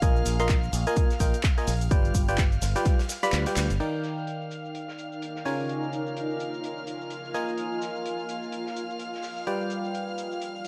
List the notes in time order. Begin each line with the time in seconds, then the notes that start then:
Already playing: F5 F6
0.02 A#1 A#3 F4 A#4 D#5 G#5, kick, closed hi-hat, shaker
0.16 shaker
0.25 A#1, snare, closed hi-hat, open hi-hat, shaker
0.40 A#3 F4 A#4 D#5 C6, closed hi-hat, shaker
0.49 kick, snare, clap, closed hi-hat, shaker
0.63 shaker
0.73 A#1, closed hi-hat, open hi-hat, shaker
0.87 A#3 F4 A#4 D#5 G#5, closed hi-hat, shaker
0.96 kick, closed hi-hat, shaker
1.10 snare, closed hi-hat, shaker
1.20 A#1 A#3 F4 A#4 D#5 G5, kick, closed hi-hat, open hi-hat, shaker
1.34 closed hi-hat, shaker
1.43 kick, snare, clap, closed hi-hat, shaker
1.58 A#3 F4 A#4 D#5 G#5, snare, closed hi-hat, shaker
1.67 A#1, snare, open hi-hat, shaker
1.81 closed hi-hat, shaker
1.91 G3 F4 B4 D5 G5, kick, closed hi-hat, shaker
2.05 closed hi-hat, shaker
2.15 G1, kick, closed hi-hat, open hi-hat, shaker
2.29 G3 F4 B4 D5 G5, closed hi-hat, shaker
2.38 kick, snare, clap, closed hi-hat, shaker
2.52 closed hi-hat, shaker
2.62 G1, snare, closed hi-hat, open hi-hat, shaker
2.75 G3 F4 B4 D5 G5, snare, closed hi-hat, shaker
2.85 kick, snare, closed hi-hat, shaker
2.99 snare, closed hi-hat, shaker
3.09 snare, closed hi-hat, open hi-hat, shaker
3.23 G3 F4 B4 D5 B5, snare, closed hi-hat, shaker
3.32 D2, snare, clap, closed hi-hat, shaker
3.46 G3 F4 B4 D5 G5, snare, closed hi-hat, shaker
3.57 D2, snare, clap, closed hi-hat, open hi-hat, shaker
3.70 G1, closed hi-hat, shaker
3.80 D#3 D#4 A#4 D5 F5 G5 F6, closed hi-hat, crash, shaker
3.94 D5, shaker
4.00 A#4, closed hi-hat, shaker
4.05 snare
4.18 shaker
4.27 closed hi-hat, shaker
4.41 shaker
4.51 closed hi-hat, shaker
4.65 shaker
4.75 closed hi-hat, shaker
4.88 snare, shaker
4.98 closed hi-hat, shaker
5.12 shaker
5.22 closed hi-hat, shaker
5.36 snare, shaker
5.45 C#3 F4 A#4 C#5 G#5, snare, open hi-hat, shaker
5.59 shaker
5.69 closed hi-hat, shaker
5.83 shaker
5.92 G#5, closed hi-hat, shaker
6.07 shaker
6.16 closed hi-hat, shaker
6.30 shaker
6.40 closed hi-hat, shaker
6.54 shaker
6.64 closed hi-hat, shaker
6.77 shaker
6.87 closed hi-hat, shaker
7.01 shaker
7.10 closed hi-hat, shaker
7.25 shaker
7.34 A#3 F4 A#4 D#5 G#5, snare, closed hi-hat, shaker
7.48 closed hi-hat, shaker
7.58 closed hi-hat, shaker
7.72 shaker
7.82 snare, closed hi-hat, shaker
7.96 shaker
8.05 closed hi-hat, shaker
8.19 shaker
8.29 closed hi-hat, shaker
8.43 shaker
8.52 closed hi-hat, shaker
8.66 snare, shaker
8.76 closed hi-hat, shaker
8.90 shaker
8.99 closed hi-hat, shaker
9.14 snare, shaker
9.22 snare, open hi-hat, shaker
9.37 shaker
9.47 G3 F4 B4 D5 G5, closed hi-hat, shaker
9.61 shaker
9.67 B4, closed hi-hat, shaker
9.85 D5, shaker
9.94 closed hi-hat, shaker
10.08 shaker
10.18 closed hi-hat, shaker
10.32 shaker
10.42 closed hi-hat, shaker
10.55 shaker
10.65 closed hi-hat